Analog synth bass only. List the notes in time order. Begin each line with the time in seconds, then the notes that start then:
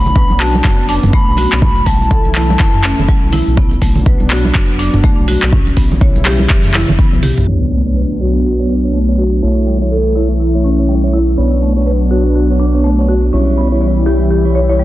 Already playing: B1
0.30 B1
0.65 F#1
1.03 F#1
1.28 B1
1.52 B1
1.86 B1
2.25 B1
2.60 F#1
2.99 F#1
3.23 B1
3.47 B1
3.82 B1
4.21 B1
4.55 F#1
4.94 F#1
5.18 B1
5.43 B1
5.77 B1
6.15 B1
6.50 F#1
6.89 F#1
7.14 B1
7.38 B1
7.48 B1
9.43 B1
11.38 B1
13.33 B1